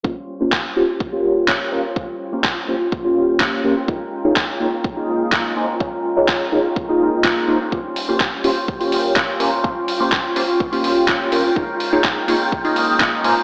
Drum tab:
HH |----------------|----------------|----------------|----------------|
CP |----x-------x---|----x-------x---|----x-------x---|----x-------x---|
BD |o---o---o---o---|o---o---o---o---|o---o---o---o---|o---o---o---o---|

HH |--o---o--oo---o-|--o---o--oo---o-|--o---o--oo---o-|
CP |----x-------x---|----x-------x---|----x-------x---|
BD |o---o---o---o---|o---o---o---o---|o---o---o---o---|